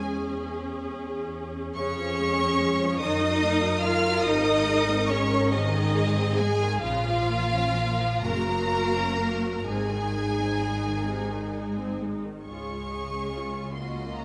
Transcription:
Already playing: E2 G#3 C#4 G#4 G#5
1.76 F2 C#3 C#4 G#4 C#5 C#6
1.98 F3
2.19 G#3
2.41 C#4
2.60 G#3
2.81 F3
2.99 F#2 D#3 D#4 A#4 D#5 D#6
3.21 F#3
3.42 A#3
3.61 F#3
3.81 D#3 F4 F5 F6
4.02 F#3
4.22 G#1 C3 D#4 D#5 D#6
4.45 D#3
4.65 G#3
4.88 C4
5.08 G#3 C#4 C#5 C#6
5.31 D#3
5.52 C3 D#3 D#4 G#4 D#5
5.74 D#3
5.97 G#3
6.18 C4
6.37 G#3 G#4 G#5
6.61 D#3
6.81 A#1 C#3 F3 F4 F5
7.05 F3
7.28 A#3
7.52 C#4
7.75 A#3
8.00 F3
8.23 F#1 C#3 A#3 F#4 A#4 A#5
8.48 F#3
8.71 A#3
8.94 C#4
9.17 A#3
9.40 F#3
9.58 A#5
9.66 G#1 C3 G#3 D#4 G#4 G#5
9.89 D#3
10.15 G#3
10.38 C4
10.61 G#3
10.85 D#3
11.06 C3
11.30 D#3
11.53 G#3
11.77 C4
12.00 G#3
12.24 D#3
12.43 C#2 C#3 G#3 F4 G#4 C#5 C#6
12.91 G#4
13.34 F4
13.74 A#3 F4 F#4 D#5 C6
14.17 A#5

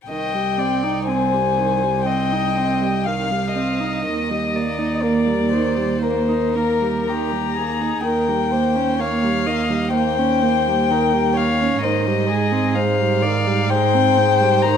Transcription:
0.08 C2 D#3 D#5 G5
0.34 G3
0.58 C4 D5
0.83 D#4
1.07 C4 C5 G#5
1.33 G3
1.58 D#3
1.83 G3
2.06 C4 D#5 G5
2.32 D#4
2.57 C4
2.82 G3
3.06 D#3 F5
3.31 G3
3.54 C4 D#5
3.80 D#4
4.05 D#2 D#3 D#5
4.30 G3
4.55 A#3 D5
4.78 D#4
5.02 A#3 A#4
5.27 G3
5.52 D#3 C5
5.77 G3
6.01 A#3 A#4 C5
6.28 D#4
6.55 A#3 A#4
6.82 G3
7.08 D#3 G4 A#5
7.32 G3
7.57 A#3 G#4
7.82 D#4
8.04 D#2 D#3 A#4 G5
8.28 G3
8.51 A#3 C5
8.76 C#4
8.99 A#3 C#5 F5
9.23 G3
9.46 D#3 D#5
9.70 G3
9.93 A#3 C5 G5
10.18 C#4
10.42 A#3
10.67 G3
10.90 D#3 A#4
11.13 G3
11.35 A#3 C#5 F5
11.61 C#4
11.83 G#2 D#3 C5 D#5
12.07 G3
12.29 G#3 G#4
12.52 C4
12.74 G#3 C5 F5
13.00 G3
13.22 D#3 D5
13.46 G3
13.70 G#3 C5 G5
13.94 C4
14.18 G#3
14.41 G3
14.63 D#3 A#5

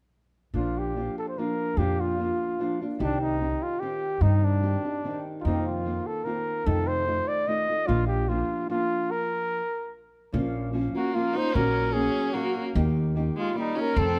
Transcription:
0.54 A#1 A#2 F3 A#3 D4 F4
0.78 G4
0.96 F3 A#3 D4 F4
1.18 A4
1.29 C5
1.38 F3 A#3 D4 F4 A#4
1.77 F2 A#2 F3 A#3 D4 F4 G4
2.00 F4
2.19 F3 A#3 D4 F4
2.59 F3 A#3 D4 F4
2.81 A#3 D4 F4
2.99 C2 C3 D#3 C4 D4 D#4 G4
3.22 D#4
3.40 D#3 C4 D#4 G4
3.63 F4
3.80 D#3 C4 D#4 G4
4.21 G2 C3 D#3 C4 D#4 G4
4.44 D4
4.62 D#3 C4 D#4 G4
4.84 C4 D#4 G4
5.04 D#3 C4 D#4 G4
5.41 D#4 F4
5.45 F2 C3 D#3 A#3 C4 F4
5.66 F4
5.85 D#3 A#3 C4 F4
6.07 A4
6.24 D#3 A#3 C4 F4 A#4
6.66 F2 C3 D#3 A3 D#4 F4 A4
6.87 C5
7.06 D#3 A3 D#4 F4
7.28 D5
7.48 D#3 A3 D#4 F4 D#5
7.69 D#3 A3 D#4 F4
7.87 A#1 A#2 F3 A#3 D4 F4
8.07 G4
8.29 F3 A#3 D4 F4
8.69 F3 A#3 D4 F4
9.11 A#4
10.32 A#1 A#2 F3 A#3 C#4 F4
10.73 F3 A#3 C#4 F4
10.95 A#3 C#4 F4 F#4
11.14 F3 A#3 C#4 F4
11.34 A#3 C#4 D#4 F4 C5
11.53 A#1 A#2 F#3 A#3 C#4 F#4 A#4
11.92 F#3 A#3 C#4 F#4 G#4
12.33 F#3 A#3 C#4 F#4
12.55 A#3 C#4 F#4
12.75 D#2 D#3 A#3 D#4 G4
13.15 D#3 A#3 D#4 G4
13.36 G#3 F4
13.55 D#3 G3 A#3 D#4 G4
13.59 D#4
13.75 A#3 C#4 D#4 G4
13.81 A#4
13.96 F2 C3 F3 A3 C4 A4

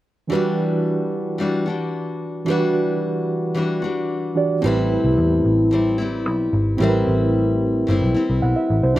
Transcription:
0.28 E3 D4 F#4 G4
0.32 G3 D4 F#4 B4
1.38 E3 G3 D4 F#4
1.66 G3 D4 F#4
2.45 E3 G3 D4 F#4 G4
2.50 D4 F#4 B4
3.55 E3 G3 D4 F#4
3.82 G3 D4 F#4
4.35 E3 D4 F#4 G4 D5
4.61 A1 A2 G3 C4 E4 G4
4.66 C4 E4 B4
5.04 C2
5.18 E2
5.45 A1
5.71 A2 G3 C4 E4
5.98 G3 C4 E4
6.26 B1
6.53 G#1
6.77 A1 A2 G3 C4 E4 G4
6.82 C4 E4 A#4
6.88 B4
7.07 A1
7.87 G1 A2 G3 C4 E4
8.03 B1
8.14 G3 C4 E4
8.30 C2
8.42 B1 F#5
8.56 E5
8.70 A1
8.83 C2 C5
8.94 E3 D4 F#4

